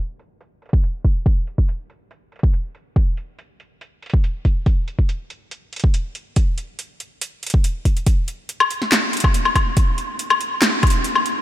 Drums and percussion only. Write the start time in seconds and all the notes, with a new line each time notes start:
0.19 closed hi-hat
0.41 closed hi-hat
0.62 closed hi-hat
0.66 closed hi-hat
0.69 closed hi-hat
0.73 kick
0.83 closed hi-hat
1.05 kick, closed hi-hat
1.26 kick, closed hi-hat
1.47 closed hi-hat
1.58 kick
1.68 closed hi-hat
1.90 closed hi-hat
2.11 closed hi-hat
2.32 closed hi-hat
2.36 closed hi-hat
2.39 closed hi-hat
2.43 kick
2.53 closed hi-hat
2.75 closed hi-hat
2.96 kick, closed hi-hat
3.17 closed hi-hat
3.39 closed hi-hat
3.60 closed hi-hat
3.81 closed hi-hat
4.02 closed hi-hat
4.06 closed hi-hat
4.10 kick, closed hi-hat
4.24 closed hi-hat
4.45 kick, closed hi-hat
4.66 kick, closed hi-hat
4.88 closed hi-hat
4.99 kick
5.09 closed hi-hat
5.30 closed hi-hat
5.51 closed hi-hat
5.73 closed hi-hat
5.76 closed hi-hat
5.80 closed hi-hat
5.84 kick
5.94 closed hi-hat
6.15 closed hi-hat
6.36 kick, closed hi-hat
6.58 closed hi-hat
6.79 closed hi-hat
7.00 closed hi-hat
7.21 closed hi-hat
7.43 closed hi-hat
7.47 closed hi-hat
7.50 kick, closed hi-hat
7.64 closed hi-hat
7.85 kick, closed hi-hat
7.97 closed hi-hat
8.06 kick, closed hi-hat
8.28 closed hi-hat
8.49 closed hi-hat
8.60 low woodblock
8.71 closed hi-hat
8.82 snare
8.92 snare, clap, closed hi-hat
9.13 closed hi-hat
9.17 closed hi-hat
9.20 kick, closed hi-hat
9.24 low woodblock
9.34 closed hi-hat
9.45 low woodblock
9.56 kick, closed hi-hat, low woodblock
9.77 kick, closed hi-hat
9.98 closed hi-hat
10.19 closed hi-hat
10.30 low woodblock
10.41 closed hi-hat
10.62 snare, clap, closed hi-hat
10.83 kick, closed hi-hat, low woodblock
10.87 closed hi-hat
10.90 closed hi-hat
11.04 closed hi-hat
11.15 low woodblock
11.26 closed hi-hat